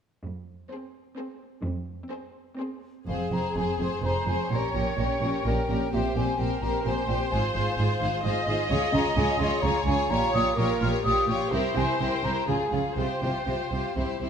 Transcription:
0.23 cello section F2
0.70 viola section C4, violin section G#4 C5
1.18 viola section C4, violin section G#4 C5
1.64 cello section F2
2.10 viola section C4, violin section G#4 C5
2.58 viola section C4, violin section G#4 C5
3.07 double bass section F1, cello section F2, violin section C4 G#4 C5, viola section G#4, flute F5
3.31 double bass section F1, cello section F2, violin section C4 G#4 C5, flute A#5
3.55 double bass section F1, cello section F2, violin section C4 G#4 C5, flute G#5
3.79 double bass section F1, cello section F2, violin section C4 G#4 C5, flute C6
4.03 double bass section F1, cello section F2, violin section C4 G#4 C5, viola section C5, flute A#5
4.26 double bass section F1, cello section F2, violin section C4 G#4 C5, flute G#5
4.50 double bass section A#1, cello section A#2, violin section C#4 G4 A#4, viola section C#5, flute A#5
4.74 double bass section A#1, cello section A#2, violin section C#4 G4 A#4, flute G5
4.97 double bass section A#1, cello section A#2, violin section C#4 G4 A#4, flute G5
5.21 double bass section A#1, cello section A#2, violin section C#4 G4 A#4
5.44 double bass section A#1, cello section A#2, violin section C#4 G4 A#4, viola section A#4
5.67 double bass section A#1, cello section A#2, violin section C#4 G4 A#4
5.91 double bass section A#1, cello section A#2, violin section C4 G4 C5, viola section G4, flute E5
6.14 double bass section A#1, cello section A#2, violin section C4 G4 C5, flute G#5
6.37 double bass section A#1, cello section A#2, violin section C4 G4 C5, viola section A#4, flute G5
6.60 double bass section A#1, cello section A#2, violin section C4 G4 C5, flute A#5
6.84 double bass section A#1, cello section A#2, violin section C4 G4 C5, viola section C5, flute G#5
7.06 double bass section A#1, cello section A#2, violin section C4 G4 C5, flute G5
7.30 double bass section G#1, cello section G#2, violin section F4 G#4 C5, flute G#5
7.54 double bass section G#1, cello section G#2, violin section F4 G#4 C5, flute F5
7.76 double bass section G#1, cello section G#2, violin section F4 G#4 C5, flute F5
8.00 double bass section G#1, cello section G#2, violin section F4 G#4 C5
8.24 double bass section G#1, cello section G#2, violin section F4 G#4 C5, viola section D#5
8.47 double bass section G#1, cello section G#2, violin section F4 G#4 C5
8.69 double bass section C#2, cello section C#3, violin section F4 G#4 C#5, flute F5
8.93 double bass section C#2, cello section C#3, violin section F4 G#4 C#5, flute A#5
9.16 double bass section C#2, cello section C#3, violin section F4 G#4 C#5, flute G#5
9.39 double bass section C#2, cello section C#3, violin section F4 G#4 C#5, flute C6
9.62 double bass section C#2, cello section C#3, violin section F4 G#4 C#5, viola section C#5, flute A#5
9.85 double bass section C#2, cello section C#3, violin section F4 G#4, flute G#5
9.89 violin section C#5
10.09 double bass section A#1, cello section A#2, violin section F4 G4 C#5, viola section C#5, flute A#5
10.33 double bass section A#1, cello section A#2, violin section F4 G4 C#5, flute D#6
10.57 double bass section A#1, cello section A#2, violin section F4 G4 C#5, viola section A#4, flute C#6
10.81 double bass section A#1, cello section A#2, violin section F4 G4 C#5, flute F6
11.04 double bass section A#1, cello section A#2, violin section F4 G4 C#5, viola section G4, flute D#6
11.28 double bass section A#1, cello section A#2, violin section F4 G4 C#5, flute C#6
11.51 double bass section C2, cello section C3, violin section E4 G4 A#4, viola section C5, flute E5
11.75 double bass section C2, cello section C3, violin section E4 G4 A#4, flute G#5
11.99 double bass section C2, cello section C3, violin section E4 G4 A#4, flute G5
12.23 double bass section C2, cello section C3, violin section E4 G4 A#4, flute A#5
12.48 double bass section C#2, cello section C#3, violin section F4 G#4, viola section G#4, flute G#5
12.72 double bass section C#2, cello section C#3, violin section F4 G#4, flute F5
12.97 double bass section C2, cello section C3, violin section F4 G4 C5, viola section C5, flute G5
13.22 double bass section C2, cello section C3, violin section F4 G4 C5
13.47 double bass section C2, cello section C3, violin section F4 G4 C5
13.72 double bass section C2, cello section C3, violin section F4 G4 C5
13.97 double bass section C2, cello section C3, violin section E4 G4 C5
14.21 double bass section C2, cello section C3, violin section E4 G4 C5

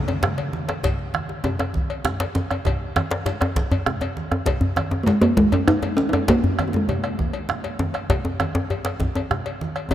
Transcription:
Already playing: talking drum C#3
0.08 cowbell, djembe tone
0.23 bombo rim, djembe slap, high conga, djembe tone, low conga, djembe bass
0.38 cowbell, djembe slap
0.53 high conga
0.68 bombo rim, cowbell, djembe slap
0.84 bombo low, cowbell, djembe tone, djembe bass, low conga
0.99 djembe slap, high conga
1.14 bombo rim, high conga
1.29 bombo rim, djembe slap, high conga
1.44 cowbell, djembe tone, high conga, low conga, djembe bass
1.59 bombo rim, cowbell, djembe tone
1.74 bombo low, high conga
1.90 cowbell
2.04 bombo rim, djembe slap, djembe tone, high conga, djembe bass, low conga
2.20 cowbell, djembe slap
2.35 high conga, djembe tone
2.51 bombo rim, cowbell, djembe tone
2.65 bombo low, cowbell, djembe tone, low conga, djembe bass
2.96 bombo rim, cowbell, high conga, djembe tone
3.11 djembe slap
3.26 cowbell, djembe slap, djembe tone, high conga, djembe bass, low conga
3.41 bombo rim, cowbell, djembe slap, high conga, djembe tone
3.56 bombo low, djembe slap, high conga
3.71 cowbell, djembe slap, djembe bass
3.86 bombo rim, djembe slap, djembe tone, djembe bass, low conga
4.01 cowbell, djembe slap, djembe tone
4.17 high conga
4.31 bombo rim, djembe tone
4.46 bombo low, cowbell, djembe slap, djembe tone, djembe bass, low conga
4.61 djembe slap, high conga, djembe bass
4.76 bombo rim, cowbell, djembe tone, high conga
4.91 bombo rim, djembe slap, djembe tone, high conga
5.03 talking drum G#3 A#3, cowbell, djembe tone, high conga, djembe bass, low conga
5.21 talking drum A#3, cowbell, djembe tone
5.37 talking drum G#3, bombo low, djembe slap, high conga
5.52 talking drum C#4, cowbell, djembe bass
5.68 talking drum D#4, bombo rim, djembe slap, djembe tone, high conga, low conga, djembe bass
5.82 cowbell, djembe slap, djembe tone
5.97 talking drum C#4, high conga
6.09 talking drum D#4, djembe tone
6.13 talking drum C#4, bombo rim, cowbell
6.28 talking drum A#3, bombo low, cowbell, djembe slap, djembe tone, low conga, djembe bass
6.43 djembe slap, high conga, djembe bass
6.59 bombo rim, cowbell, djembe tone, high conga
6.68 talking drum A#3
6.73 talking drum G#3, bombo rim, djembe slap, djembe tone, high conga
6.89 cowbell, djembe tone, high conga, djembe bass, low conga
7.04 bombo rim, cowbell
7.19 bombo low, high conga
7.33 cowbell
7.49 bombo rim, djembe slap, high conga, djembe tone, low conga
7.64 cowbell, djembe slap
7.79 djembe tone, high conga
7.94 bombo rim, cowbell
8.10 bombo low, cowbell, djembe slap, djembe tone, djembe bass, low conga
8.25 djembe tone, high conga
8.40 bombo rim, cowbell, djembe tone, high conga
8.55 bombo rim, djembe slap, djembe tone
8.70 cowbell, djembe tone, high conga, djembe bass
8.85 bombo rim, cowbell, djembe slap
9.00 bombo low, djembe tone, high conga
9.15 cowbell, djembe tone
9.31 bombo rim, djembe slap, djembe tone, high conga, djembe bass, low conga
9.46 cowbell, djembe slap
9.61 high conga
9.76 bombo rim, cowbell
9.91 bombo low, cowbell, djembe slap, djembe tone, djembe bass

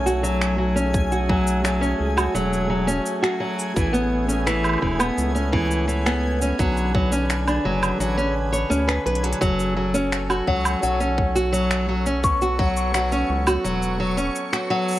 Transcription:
Already playing: analog synth bass B1, harmonium F#3 A3 C#4, synth texture G#4 G#5
0.06 nylon-string guitar F#4, shaker
0.23 nylon-string guitar F#3, shaker
0.41 finger snap, shaker
0.58 nylon-string guitar F#3
0.76 nylon-string guitar C#4, shaker
0.94 kick, shaker
1.12 nylon-string guitar F#4, shaker
1.29 nylon-string guitar F#3, kick
1.47 shaker
1.64 nylon-string guitar F#3, finger snap, shaker
1.81 nylon-string guitar C#4, shaker
2.00 analog synth bass C#2
2.17 nylon-string guitar F#4, low woodblock, shaker
2.34 analog synth bass E1, nylon-string guitar F#3, shaker
2.53 shaker
2.70 nylon-string guitar F#3
2.87 nylon-string guitar C#4, shaker
3.06 shaker
3.22 nylon-string guitar F#4, finger snap, shaker
3.40 nylon-string guitar F#3
3.59 shaker
3.76 analog synth bass A1, nylon-string guitar E3, harmonium B3 C#4, kick, shaker
3.93 nylon-string guitar B3, shaker
4.28 nylon-string guitar C#4, shaker
4.46 nylon-string guitar E3, finger snap, shaker
4.64 low woodblock, shaker
4.69 low woodblock
4.73 low woodblock
4.78 nylon-string guitar E3, low woodblock
4.82 analog synth bass E1, kick, low woodblock
4.87 low woodblock
4.91 low woodblock
4.95 nylon-string guitar B3, low woodblock
5.00 low woodblock, shaker
5.18 analog synth bass C#2, shaker
5.35 nylon-string guitar C#4, shaker
5.52 nylon-string guitar E3, kick
5.71 shaker
5.88 nylon-string guitar E3, shaker
6.06 nylon-string guitar B3, finger snap, shaker
6.42 nylon-string guitar C#4, shaker
6.59 analog synth bass B1, harmonium D3 B4, nylon-string guitar F#3, kick, shaker
6.77 shaker
6.95 nylon-string guitar F#3, kick
7.12 nylon-string guitar C#4, shaker
7.30 finger snap, shaker
7.48 nylon-string guitar D4, low woodblock, shaker
7.65 analog synth bass F#1, nylon-string guitar F#3
7.83 low woodblock, shaker
7.99 analog synth bass A1, nylon-string guitar F#3, shaker
8.18 nylon-string guitar C#4, shaker
8.52 nylon-string guitar C#5, shaker
8.70 analog synth bass D2, nylon-string guitar C#4, shaker
8.87 nylon-string guitar B4, finger snap, shaker
9.06 analog synth bass B1, nylon-string guitar B4, closed hi-hat
9.15 closed hi-hat
9.23 nylon-string guitar F#3, closed hi-hat
9.33 closed hi-hat
9.41 analog synth bass F#1, nylon-string guitar F#3, harmonium F#3 A4, synth texture C#5 C#6, kick, shaker
9.60 shaker
9.77 nylon-string guitar F#3
9.94 nylon-string guitar C#4, shaker
10.12 finger snap, shaker
10.30 nylon-string guitar F#4, low woodblock, shaker
10.47 analog synth bass C#2, nylon-string guitar F#3, music box F#5, kick
10.65 low woodblock, shaker
10.83 analog synth bass B1, nylon-string guitar F#3, music box F#5, shaker
11.00 nylon-string guitar C#4, shaker
11.18 kick
11.36 nylon-string guitar F#4, shaker
11.53 nylon-string guitar F#3, shaker
11.71 finger snap, shaker
11.89 nylon-string guitar F#3
12.06 nylon-string guitar C#4, shaker
12.23 harmonium B3, music box C#6, kick, shaker
12.42 nylon-string guitar F#4, shaker
12.59 nylon-string guitar F#3, music box F#5, kick
12.77 shaker
12.94 nylon-string guitar F#3, music box F#5, finger snap, shaker
13.12 nylon-string guitar C#4, shaker
13.29 analog synth bass C#2
13.47 nylon-string guitar F#4, low woodblock, shaker
13.64 analog synth bass E1, nylon-string guitar F#3, shaker
13.83 shaker
14.00 nylon-string guitar F#3
14.17 nylon-string guitar C#4, shaker
14.36 shaker
14.53 nylon-string guitar F#4, finger snap, shaker
14.70 nylon-string guitar F#3, music box F#5
14.88 shaker
14.91 shaker
14.93 shaker
14.95 shaker

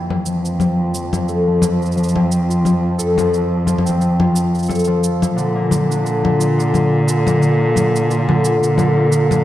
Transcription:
Already playing: cello F2, harp A#3 C4 E4
0.10 low conga
0.26 harp F3, shaker
0.45 harp C4, shaker
0.60 harp F3, low conga, shaker
0.79 harp F4
0.94 harp F3, shaker
1.13 low conga, shaker
1.28 harp A4, shaker
1.47 harp F3
1.62 low conga, shaker
1.82 shaker
1.86 shaker
1.92 shaker
1.96 harp F3, shaker
2.03 shaker
2.08 shaker
2.16 harp C4, low conga
2.30 harp F3, shaker
2.49 harp F4, shaker
2.64 harp F3, low conga, shaker
2.98 harp A4, shaker
3.17 harp F3, low conga, shaker
3.34 shaker
3.66 harp F3, low conga, shaker
3.78 low conga
3.85 harp C4, low conga, shaker
4.00 harp F3, shaker
4.19 harp F4, low conga
4.34 harp F3, shaker
4.55 shaker
4.59 shaker
4.63 shaker
4.66 harp A4, low conga, shaker
4.70 shaker
4.75 shaker
4.79 shaker
4.84 harp F3, shaker
5.04 shaker
5.22 low conga, shaker
5.36 cello A#2, harp D3, shaker
5.55 harp A#3
5.71 harp D3, low conga, shaker
5.90 harp D4, shaker
6.05 harp D3, shaker
6.25 low conga
6.39 harp F4, shaker
6.58 harp D3, shaker
6.74 low conga, shaker
7.07 harp D3, shaker
7.26 harp A#3, low conga, shaker
7.41 harp D3, shaker
7.60 harp D4
7.75 harp D3, low conga, shaker
7.96 shaker
8.09 harp F4, shaker
8.28 harp D3, low conga
8.45 shaker
8.63 shaker
8.77 harp D3, low conga, shaker
8.96 harp A#3
9.11 harp D3, shaker
9.30 harp D4, low conga, shaker

